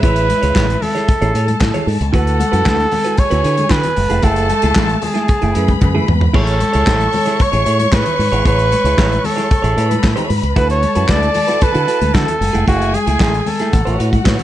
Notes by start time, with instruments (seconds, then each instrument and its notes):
Already playing: string section E4 E5
0.03 fingered electric bass A1, clean electric guitar E4 G#4 C#5, flugelhorn B4, kick, closed hi-hat
0.16 closed hi-hat
0.30 muted clean electric guitar stroke, closed hi-hat, muted conga, high conga
0.42 fingered electric bass C#2, clean electric guitar E4 G#4 C#5, closed hi-hat
0.55 fingered electric bass A1, clean electric guitar E4 G#4 C#5, kick, snare, clap, high conga
0.68 muted clean electric guitar stroke, closed hi-hat
0.80 flugelhorn A4, muted clean electric guitar stroke, open hi-hat, high conga, low conga
0.95 clean electric guitar E4 G#4 C#5, snare, closed hi-hat
1.08 muted clean electric guitar stroke, kick, closed hi-hat, muted conga
1.21 fingered electric bass A1, clean electric guitar E4 G#4 C#5, closed hi-hat
1.34 fingered electric bass A2, clean electric guitar E4 G#4 C#5, string section A4 A5, closed hi-hat
1.48 muted clean electric guitar stroke, closed hi-hat, high conga
1.61 fingered electric bass A2, muted clean electric guitar stroke, kick, snare, clap
1.74 clean electric guitar E4 G#4 C#5, closed hi-hat, low conga
1.87 fingered electric bass G#2, muted clean electric guitar stroke, open hi-hat, high conga
2.01 fingered electric bass C#2, muted clean electric guitar stroke, closed hi-hat
2.13 fingered electric bass D2, clean electric guitar E4 F#4 B4, string section F#4 F#5, flugelhorn A4, kick, closed hi-hat
2.27 closed hi-hat
2.40 muted clean electric guitar stroke, closed hi-hat, muted conga, high conga
2.52 fingered electric bass F#2, clean electric guitar E4 F#4 B4, closed hi-hat
2.65 fingered electric bass D2, clean electric guitar E4 F#4 B4, kick, snare, clap, muted conga, high conga
2.79 muted clean electric guitar stroke, closed hi-hat
2.91 string section G#4 G#5, muted clean electric guitar stroke, open hi-hat, muted conga, high conga, low conga
3.04 clean electric guitar E4 F#4 B4, closed hi-hat
3.17 flugelhorn C#5, muted clean electric guitar stroke, kick, closed hi-hat, muted conga
3.30 fingered electric bass D2, clean electric guitar E4 F#4 B4, closed hi-hat
3.44 fingered electric bass D3, clean electric guitar E4 F#4 B4, closed hi-hat
3.57 muted clean electric guitar stroke, closed hi-hat, high conga
3.69 fingered electric bass D3, clean electric guitar E4 F#4 B4, flugelhorn B4, kick, snare, clap
3.83 muted clean electric guitar stroke, closed hi-hat, low conga
3.96 fingered electric bass F#1, string section A3 A5, muted clean electric guitar stroke, open hi-hat, high conga
4.10 fingered electric bass F1, clean electric guitar A3 E4 G#4, closed hi-hat
4.22 fingered electric bass F#1, clean electric guitar A3 E4 G#4, flugelhorn A4, kick, closed hi-hat, muted conga
4.36 closed hi-hat
4.49 muted clean electric guitar stroke, closed hi-hat, muted conga, high conga
4.62 fingered electric bass C#2, clean electric guitar A3 E4 G#4, closed hi-hat
4.76 fingered electric bass A1, clean electric guitar A3 E4 G#4, kick, snare, clap, muted conga, high conga
4.89 muted clean electric guitar stroke, closed hi-hat
5.02 flugelhorn G#4, muted clean electric guitar stroke, open hi-hat, high conga, low conga
5.14 clean electric guitar A3 E4 G#4, snare, closed hi-hat
5.28 muted clean electric guitar stroke, kick, closed hi-hat, muted conga
5.42 fingered electric bass F#1, clean electric guitar A3 E4 G#4, closed hi-hat
5.55 fingered electric bass F#2, clean electric guitar A3 E4 G#4, string section B4 B5, closed hi-hat, muted conga
5.68 muted clean electric guitar stroke, kick, closed hi-hat, high conga
5.81 fingered electric bass F#2, muted clean electric guitar stroke, kick, clap, high tom
5.95 clean electric guitar A3 E4 G#4, low conga
6.07 fingered electric bass E2, muted clean electric guitar stroke, mid tom, muted conga, high conga
6.21 muted clean electric guitar stroke, floor tom
6.33 fingered electric bass A1, clean electric guitar E4 G#4 C#5, flugelhorn A4, string section C#5 C#6, kick, crash, muted conga
6.47 closed hi-hat
6.60 muted clean electric guitar stroke, closed hi-hat, high conga
6.73 fingered electric bass C#2, clean electric guitar E4 G#4 C#5, closed hi-hat
6.86 fingered electric bass A1, clean electric guitar E4 G#4 C#5, kick, snare, clap
6.99 muted clean electric guitar stroke, closed hi-hat
7.12 muted clean electric guitar stroke, open hi-hat, muted conga, high conga, low conga
7.25 clean electric guitar E4 G#4 C#5, snare, closed hi-hat
7.39 flugelhorn C#5, muted clean electric guitar stroke, kick, closed hi-hat
7.52 fingered electric bass A1, clean electric guitar E4 G#4 C#5, closed hi-hat
7.66 fingered electric bass A2, clean electric guitar E4 G#4 C#5, closed hi-hat
7.79 muted clean electric guitar stroke, closed hi-hat, high conga
7.92 fingered electric bass A2, clean electric guitar E4 G#4 C#5, flugelhorn B4, kick, snare, clap
8.05 muted clean electric guitar stroke, closed hi-hat, low conga
8.19 fingered electric bass G#2, muted clean electric guitar stroke, open hi-hat, muted conga, high conga
8.32 fingered electric bass G#1, clean electric guitar E4 G#4 C#5, closed hi-hat
8.45 fingered electric bass A1, clean electric guitar E4 G#4 C#5, flugelhorn B4, kick, closed hi-hat, muted conga
8.59 closed hi-hat
8.72 muted clean electric guitar stroke, closed hi-hat, muted conga, high conga
8.84 fingered electric bass C#2, clean electric guitar E4 G#4 C#5, closed hi-hat
8.98 fingered electric bass A1, clean electric guitar E4 G#4 C#5, kick, snare, clap, muted conga, high conga
9.10 muted clean electric guitar stroke, closed hi-hat
9.24 flugelhorn A4, muted clean electric guitar stroke, open hi-hat, high conga, low conga
9.36 clean electric guitar E4 G#4 C#5, snare, closed hi-hat
9.51 kick, closed hi-hat, muted conga
9.62 fingered electric bass A1, clean electric guitar E4 G#4 C#5, closed hi-hat
9.77 fingered electric bass A2, clean electric guitar E4 G#4 C#5, string section B4 B5, closed hi-hat, muted conga
9.90 muted clean electric guitar stroke, closed hi-hat, high conga
10.04 fingered electric bass A2, muted clean electric guitar stroke, kick, snare, clap
10.16 clean electric guitar E4 G#4 C#5, closed hi-hat, low conga
10.29 fingered electric bass G#2, muted clean electric guitar stroke, open hi-hat, muted conga, high conga
10.43 fingered electric bass C#2, muted clean electric guitar stroke, closed hi-hat
10.56 fingered electric bass D2, clean electric guitar E4 F#4 B4, string section A4 A5, flugelhorn B4, kick, closed hi-hat, muted conga
10.70 flugelhorn C#5, closed hi-hat
10.82 muted clean electric guitar stroke, closed hi-hat, high conga
10.95 fingered electric bass F#2, clean electric guitar E4 F#4 B4, closed hi-hat
11.08 fingered electric bass D2, clean electric guitar E4 F#4 B4, flugelhorn D5, kick, snare, clap, muted conga, high conga
11.21 muted clean electric guitar stroke, closed hi-hat
11.34 muted clean electric guitar stroke, open hi-hat, high conga, low conga
11.47 clean electric guitar E4 F#4 B4, snare, closed hi-hat
11.60 flugelhorn B4, muted clean electric guitar stroke, muted fingered electric bass stroke, kick, closed hi-hat
11.73 fingered electric bass D3, clean electric guitar E4 F#4 B4, closed hi-hat
11.87 clean electric guitar E4 F#4 B4, closed hi-hat, muted conga
12.00 fingered electric bass D2, muted clean electric guitar stroke, closed hi-hat, high conga
12.14 fingered electric bass D3, clean electric guitar E4 F#4 B4, flugelhorn A4, kick, snare, clap
12.27 muted clean electric guitar stroke, closed hi-hat, low conga
12.41 fingered electric bass F#1, string section G#4 G#5, muted clean electric guitar stroke, open hi-hat, muted conga, high conga
12.53 fingered electric bass F1, clean electric guitar A3 E4 G#4, closed hi-hat
12.67 fingered electric bass F#1, clean electric guitar A3 E4 G#4, flugelhorn F#4, kick, closed hi-hat
12.82 closed hi-hat
12.94 flugelhorn G#4, muted clean electric guitar stroke, closed hi-hat, muted conga, high conga
13.07 fingered electric bass C#2, clean electric guitar A3 E4 G#4, closed hi-hat
13.20 fingered electric bass A1, clean electric guitar A3 E4 G#4, kick, snare, clap, high conga
13.34 muted clean electric guitar stroke, closed hi-hat
13.46 flugelhorn A4, muted clean electric guitar stroke, open hi-hat, high conga, low conga
13.59 clean electric guitar A3 E4 G#4, snare, closed hi-hat
13.72 fingered electric bass A1, string section F#4 F#5, muted clean electric guitar stroke, kick, closed hi-hat
13.85 fingered electric bass A1, clean electric guitar F#4 B4 C#5, closed hi-hat
13.98 fingered electric bass A2, clean electric guitar F#4 B4 C#5, closed hi-hat, muted conga
14.11 muted clean electric guitar stroke, kick, closed hi-hat, high conga
14.24 fingered electric bass A2, clean electric guitar F#4 B4 C#5, kick, snare, clap, muted conga
14.38 muted clean electric guitar stroke, closed hi-hat, low conga